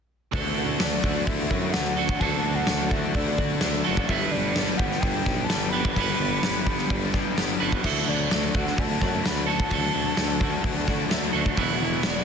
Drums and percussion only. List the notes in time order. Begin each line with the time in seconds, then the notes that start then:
0.33 kick, open hi-hat
0.80 snare, open hi-hat
1.04 kick
1.27 kick, open hi-hat
1.51 kick
1.74 snare, open hi-hat
2.09 kick
2.20 kick, open hi-hat
2.67 snare, open hi-hat
2.91 kick
3.14 kick, open hi-hat
3.38 kick
3.61 snare, open hi-hat
3.97 kick
4.09 kick, open hi-hat
4.56 snare, open hi-hat
4.79 kick
4.92 snare
5.02 kick, open hi-hat
5.26 kick, snare
5.50 snare, open hi-hat
5.85 kick
5.96 kick, open hi-hat
6.43 snare, open hi-hat
6.67 kick
6.78 snare
6.90 kick, open hi-hat
7.14 kick, snare
7.38 snare, open hi-hat
7.72 kick
7.84 kick, crash
8.31 snare, open hi-hat
8.55 kick
8.67 snare
8.78 kick, open hi-hat
9.01 kick, snare
9.26 snare, open hi-hat
9.60 kick
9.70 kick, open hi-hat
10.17 snare, open hi-hat
10.41 kick
10.64 kick, open hi-hat
10.88 kick, snare
11.11 snare, open hi-hat
11.46 kick
11.57 kick, open hi-hat
12.03 snare, open hi-hat